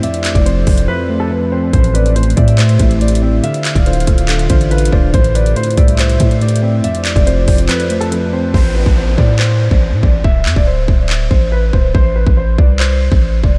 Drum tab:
HH |x--x--x--x--x-----o--x--------------------------|x--x--x--x--x-x-x-x--x--x--x--x--x--x-x-x-------|x--x--x--x--x-x-x-x--x--x--x--x--x--x-x-x-------|x--x--x--x--x-x-x-x--x--x--x--x--x--x-x-x-------|
CP |------x-----------------------------------------|------------------------x-----------------------|------x-----------------x-----------------------|------------------------x-----------------------|
BD |---------o--------o-----------------------------|o-----------------o-----------o-----------------|---------o--------o-----------o-----------o-----|o-----------------o-----------o-----------------|

HH |x--x--x--x--x-----o--x--x--x--x--x--x-----------|------------------------------------------------|------------------------------------------------|------------------------------------------------|
CP |------x-----------------x-----------------------|------------------------x-----------------------|------x-----------------x-----------------------|------------------------x-----------------------|
BD |---------o--------o-----------------------------|o--------o--------o--------------o--------o-----|o--------o--------o-----------o-----------o-----|o--------o--------o--------------o--------o-----|